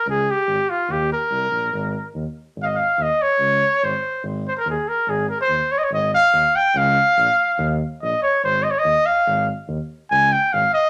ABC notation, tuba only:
X:1
M:2/4
L:1/8
Q:1/4=143
K:Ab
V:1 name="Tuba" clef=bass
D,,2 A,,, z | E,,2 C,, B,,, | A,,,2 E,, z | A,,,2 E,, z |
D,,2 A,,, z | A,,,2 E,, z | A,,,2 E,, z | A,,,2 E,, z |
D,,2 B,,, z | E,,2 B,,, z | A,,,2 E,, z | A,,,2 E,, z |
D,,2 A,,, z |]